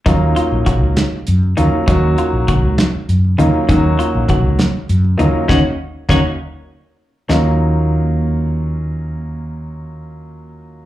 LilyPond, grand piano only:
\new Staff \with { instrumentName = "Grand piano" } { \time 6/8 \key ees \minor \tempo 4. = 66 <ges bes des' ees' f'>4. r4 <ges bes des' ees' f'>8 | <ges bes des' ees' ges'>4. r4 <ges bes des' ees' f'>8 | <ges bes des' ees' ges'>4. r4 <ges bes des' ees' f'>8 | <bes des' ees'>8 r8 <bes des' ees'>8 r4. |
<ges bes des' ees' f'>2.~ | <ges bes des' ees' f'>2. | }